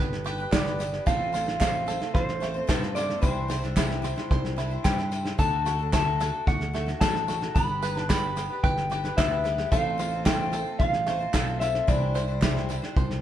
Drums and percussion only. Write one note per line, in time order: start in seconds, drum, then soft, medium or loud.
0.13 snare soft
0.26 snare soft
0.52 kick medium
0.52 snare loud
0.52 clap loud
0.52 tambourine medium
0.66 snare soft
0.80 snare soft
0.80 tambourine medium
0.94 snare soft
1.07 kick loud
1.07 snare soft
1.07 tambourine medium
1.34 snare soft
1.34 tambourine medium
1.48 snare soft
1.61 kick medium
1.61 snare medium
1.61 clap medium
1.61 tambourine medium
1.88 snare soft
1.88 tambourine medium
2.02 snare soft
2.15 kick loud
2.15 snare soft
2.15 tambourine soft
2.29 snare soft
2.42 snare soft
2.69 kick medium
2.69 snare medium
2.69 clap medium
2.69 tambourine medium
2.83 snare soft
2.96 snare soft
2.96 tambourine medium
3.10 snare soft
3.23 kick loud
3.23 snare soft
3.23 tambourine medium
3.50 snare soft
3.50 tambourine medium
3.64 snare soft
3.77 kick medium
3.77 snare loud
3.77 clap medium
3.77 tambourine medium
3.90 snare soft
4.04 snare soft
4.04 tambourine medium
4.18 snare soft
4.31 kick loud
4.31 snare soft
4.45 snare soft
4.58 snare soft
4.58 tambourine soft
4.85 kick medium
4.85 snare medium
4.85 clap medium
4.85 tambourine medium
4.99 snare soft
5.12 snare soft
5.12 tambourine medium
5.25 snare soft
5.39 kick loud
5.39 snare soft
5.39 tambourine medium
5.66 snare soft
5.66 tambourine medium
5.93 kick medium
5.93 snare loud
5.93 clap medium
5.93 tambourine medium
6.20 snare soft
6.20 tambourine medium
6.47 kick loud
6.47 snare soft
6.47 tambourine soft
6.61 snare soft
6.75 snare soft
6.88 snare soft
7.01 kick medium
7.01 snare loud
7.01 clap medium
7.01 tambourine medium
7.15 snare soft
7.28 snare soft
7.28 tambourine medium
7.42 snare soft
7.56 kick loud
7.56 snare soft
7.56 tambourine medium
7.82 snare soft
7.82 tambourine medium
7.97 snare soft
8.10 kick medium
8.10 snare loud
8.10 clap medium
8.10 tambourine loud
8.37 snare soft
8.37 tambourine medium
8.64 kick loud
8.64 snare soft
8.64 tambourine soft
8.77 snare soft
8.91 snare soft
9.05 snare soft
9.18 kick medium
9.18 snare loud
9.18 clap loud
9.18 tambourine medium
9.45 snare soft
9.58 snare soft
9.72 kick loud
9.72 snare soft
9.72 tambourine medium
9.99 snare soft
9.99 tambourine medium
10.26 kick medium
10.26 snare loud
10.26 clap medium
10.26 tambourine loud
10.52 snare soft
10.52 tambourine medium
10.79 kick loud
10.79 snare soft
10.79 tambourine soft
10.93 snare soft
11.06 snare soft
11.34 kick medium
11.34 snare loud
11.34 clap loud
11.34 tambourine medium
11.61 snare soft
11.61 tambourine medium
11.75 snare soft
11.88 kick loud
11.88 snare soft
11.88 tambourine medium
12.16 snare soft
12.16 tambourine medium
12.42 kick medium
12.42 snare loud
12.42 clap medium
12.42 tambourine medium
12.57 snare soft
12.70 snare soft
12.70 tambourine medium
12.83 snare soft
12.97 kick loud
12.97 snare soft
12.97 tambourine soft
13.11 snare soft